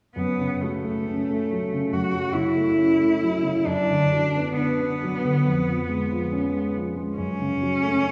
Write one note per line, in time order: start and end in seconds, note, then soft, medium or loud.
0.16 1.89 F#2 soft
0.16 0.63 B3 soft
0.39 0.75 C#3 soft
0.62 0.98 F#3 soft
0.62 1.94 A3 soft
0.85 1.20 A3 soft
1.08 1.42 C#4 soft
1.29 1.64 A3 soft
1.51 1.85 F#3 soft
1.72 2.06 C#3 soft
1.92 3.62 F#2 soft
1.92 2.35 F#4 soft
2.13 2.47 F#3 soft
2.33 2.69 C#3 soft
2.33 3.68 E4 soft
2.56 2.90 A3 soft
2.77 3.12 C#4 soft
2.99 3.35 A3 soft
3.22 3.58 F#3 soft
3.43 3.66 C#3 soft
3.65 5.41 F#2 soft
3.65 4.56 D4 medium
3.89 4.25 D3 soft
4.12 4.48 F#3 soft
4.34 4.70 B3 soft
4.56 6.72 B3 soft
4.56 4.92 D4 soft
4.80 5.15 B3 soft
5.02 5.37 F#3 soft
5.25 5.46 D3 soft
5.45 7.15 F2 soft
5.68 6.02 F3 soft
5.89 6.24 G#3 soft
6.10 6.45 F3 soft
6.32 6.67 C#4 soft
6.54 6.89 G#3 soft
6.76 7.10 F3 soft
6.97 7.19 G#3 soft
7.16 8.12 F#2 soft
7.16 8.12 C#4 medium
7.40 7.74 C#3 soft
7.61 7.96 F#3 soft
7.82 8.12 A3 soft